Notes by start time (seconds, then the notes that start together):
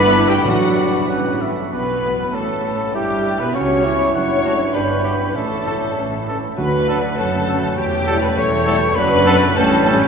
Already playing: G1 E3 G3 B3 D4 E4 B4 D5 B5
0.29 G3 G4 G5
0.44 A1 A2 F#3 D4 F#4 D5 F#5
1.08 A1 E3 C#4 F#5
1.42 E5
1.71 B1 B2 B3 B4 B5
2.33 A1 A2 A3 C#4 A4 A5
2.94 G1 G2 G3 E4 G4 G5
3.39 B2 B3 B4 B5
3.54 C#2 C#3 C#4 F#4 C#5 C#6
3.85 E4
4.14 F#1 F#2 A3 D4 C#5 F#5 C#6
4.44 A3 D4 F#4
4.73 G1 G2 G3 D4 B4 G5 B5
4.82 C#5
4.90 B4
4.99 C#5
5.04 G3 B3 D4 G4 B4
5.34 A1 A2 E3 C#4 A4 E5 A5
5.66 E3 C#4 A4
5.97 A1 A2 E3 C#4
6.27 E3 C#4 A4
6.57 D2 D3 A3 F#4 B4 F#5 B5
6.88 F#3 D4 A4
7.17 F#1 F#2 F#3 C#4 A4 A5
7.48 F#3 C#4 A4
7.77 E1 E2 G4 G5
8.06 G3 A3 E4 A4
8.21 B4 B5
8.36 E1 E2 A3 C#5 C#6
8.65 G3 A3 E4 A4
8.95 F#1 F#2 F#3 D4 B4 F#5 B5
9.26 F#3 B3 D4 A4
9.55 A1 A2 G3 C#4 A4 G5 A5
9.87 G3 C#4 A4
10.01 G4 G5